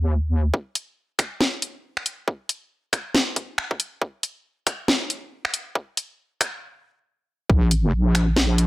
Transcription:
0.00 0.52 D#2 medium
0.54 kick loud
0.75 closed hi-hat medium
1.19 finger snap medium
1.19 kick loud
1.19 closed hi-hat medium
1.41 snare loud
1.62 closed hi-hat medium
1.97 finger snap medium
2.06 closed hi-hat medium
2.28 kick loud
2.49 closed hi-hat medium
2.93 finger snap medium
2.93 kick loud
2.93 closed hi-hat medium
3.15 snare loud
3.36 kick medium
3.36 closed hi-hat medium
3.58 finger snap medium
3.71 kick loud
3.80 closed hi-hat medium
4.02 kick loud
4.23 closed hi-hat medium
4.67 finger snap medium
4.67 kick loud
4.67 closed hi-hat medium
4.88 snare loud
5.10 closed hi-hat medium
5.45 finger snap soft
5.54 closed hi-hat medium
5.75 kick loud
5.97 closed hi-hat medium
6.41 finger snap medium
6.41 kick loud
6.41 closed hi-hat medium
7.50 7.92 A#1 medium
7.50 kick loud
7.71 closed hi-hat medium
7.93 8.67 A#1 loud
8.15 finger snap medium
8.15 closed hi-hat medium
8.36 snare loud
8.58 closed hi-hat medium

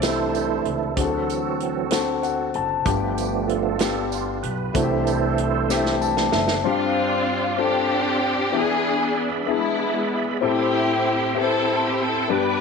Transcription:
0.00 0.62 C2 medium
0.00 0.99 C3 soft
0.00 0.92 E3 soft
0.00 0.93 A3 soft
0.00 0.96 C4 medium
0.00 0.93 D4 soft
0.00 0.99 D#4 soft
0.00 0.09 E4 soft
0.00 0.02 G4 soft
0.00 0.75 G4 soft
0.00 0.04 A4 medium
0.00 0.64 A4 medium
0.00 0.75 A4 medium
0.00 0.67 C5 medium
0.00 snare medium
0.00 closed hi-hat medium
0.00 tambourine medium
0.04 0.94 E4 soft
0.09 0.78 E4 soft
0.35 closed hi-hat soft
0.35 tambourine soft
0.65 0.94 C#2 medium
0.65 0.94 A4 medium
0.65 closed hi-hat soft
0.96 2.51 D2 medium
0.96 1.88 D3 soft
0.96 1.87 E3 soft
0.96 1.88 F#3 soft
0.96 1.69 C4 medium
0.96 2.51 C4 soft
0.96 1.69 D4 medium
0.96 2.51 F#4 soft
0.96 1.70 F#4 medium
0.96 1.05 G#4 medium
0.96 2.50 A4 medium
0.96 kick medium
0.96 closed hi-hat medium
0.96 tambourine soft
1.04 1.73 A4 medium
1.29 closed hi-hat soft
1.29 tambourine soft
1.60 closed hi-hat soft
1.90 2.63 C4 medium
1.90 2.63 D4 medium
1.90 2.64 F#4 medium
1.90 2.64 A4 medium
1.90 snare medium
1.90 closed hi-hat medium
1.90 tambourine medium
2.23 2.52 F#5 medium
2.23 closed hi-hat soft
2.23 tambourine soft
2.54 2.84 F#1 medium
2.54 2.85 A5 medium
2.54 closed hi-hat soft
2.85 4.40 G1 medium
2.85 3.76 G2 medium
2.85 3.76 F3 soft
2.85 3.77 A3 soft
2.85 3.58 B3 medium
2.85 3.77 B3 medium
2.85 3.58 D4 medium
2.85 3.47 D4 medium
2.85 3.58 F4 medium
2.85 3.45 G4 medium
2.85 3.59 G4 medium
2.85 kick medium
2.85 closed hi-hat medium
2.85 tambourine soft
3.18 closed hi-hat soft
3.18 tambourine soft
3.48 4.39 D4 medium
3.48 4.39 F4 medium
3.48 4.08 A4 medium
3.48 closed hi-hat soft
3.79 4.52 B3 medium
3.79 4.53 D4 soft
3.79 4.53 F4 medium
3.79 4.53 G4 medium
3.79 snare medium
3.79 closed hi-hat medium
3.79 tambourine medium
4.12 closed hi-hat soft
4.12 tambourine soft
4.43 4.73 B1 medium
4.43 4.76 B4 medium
4.43 closed hi-hat soft
4.73 6.29 C2 medium
4.73 5.66 C3 medium
4.73 6.59 E3 soft
4.73 5.47 A3 medium
4.73 6.59 A3 soft
4.73 5.47 C4 medium
4.73 6.60 D4 soft
4.73 5.97 E4 medium
4.73 5.47 E4 medium
4.73 4.82 F#4 medium
4.73 5.97 A4 medium
4.73 5.97 C5 medium
4.73 kick medium
4.73 closed hi-hat medium
4.73 tambourine soft
4.83 5.51 G4 medium
5.07 closed hi-hat soft
5.07 tambourine soft
5.38 closed hi-hat soft
5.68 6.41 A3 medium
5.68 6.42 C4 medium
5.68 5.77 D4 soft
5.68 6.42 G4 medium
5.68 snare soft
5.68 tambourine medium
5.77 6.45 E4 medium
5.86 snare soft
6.01 6.31 A5 medium
6.01 tambourine soft
6.17 snare medium
6.32 6.62 F#1 medium
6.32 6.62 E5 medium
6.32 snare medium
6.48 snare medium
6.64 7.55 G2 medium
6.64 7.36 C4 medium
6.64 7.56 C4 medium
6.64 7.36 D4 medium
6.64 7.56 D4 medium
6.64 7.37 F4 medium
6.64 7.56 F4 medium
6.64 8.51 G4 medium
6.64 7.37 G4 medium
6.64 10.38 D5 medium
6.64 8.51 F5 medium
6.64 8.51 C6 medium
7.57 8.30 C4 medium
7.57 8.50 C4 medium
7.57 8.30 D4 medium
7.57 8.50 D4 medium
7.57 8.30 F4 medium
7.57 8.31 A4 medium
7.62 8.55 G4 medium
8.52 9.43 E3 medium
8.52 9.24 B3 medium
8.52 9.44 B3 medium
8.52 9.25 D4 medium
8.52 9.44 D4 medium
8.52 9.25 E4 medium
8.52 8.60 G4 medium
8.52 10.40 G#4 medium
8.52 12.26 E5 medium
8.52 10.39 B5 medium
8.56 9.17 G#4 loud
8.60 9.28 G#4 medium
9.46 10.38 G#3 medium
9.46 10.19 B3 medium
9.46 10.38 B3 medium
9.46 10.19 D4 medium
9.46 10.19 E4 medium
9.46 10.15 E4 medium
9.46 10.20 G#4 medium
10.41 11.32 A2 medium
10.41 11.13 C4 medium
10.41 11.33 C4 medium
10.41 11.13 E4 medium
10.41 11.33 E4 medium
10.41 11.14 G4 medium
10.41 11.33 G4 medium
10.41 12.28 A4 medium
10.41 11.14 A4 medium
10.41 12.28 G5 medium
10.41 12.29 C6 medium
11.34 12.07 C4 medium
11.34 12.27 C4 medium
11.34 12.07 E4 medium
11.34 12.27 E4 medium
11.34 12.07 G4 medium
11.34 11.84 A4 loud
11.34 11.43 B4 medium
11.42 12.11 C5 medium
11.85 11.99 G4 medium
12.00 12.30 A4 medium
12.28 12.61 G2 medium
12.28 12.61 B3 medium
12.28 12.61 D4 medium
12.28 12.61 G4 medium
12.28 12.61 B4 medium
12.28 12.61 B4 loud
12.28 12.61 D5 medium
12.28 12.61 G5 medium
12.28 12.61 D6 medium
12.33 12.61 G4 medium

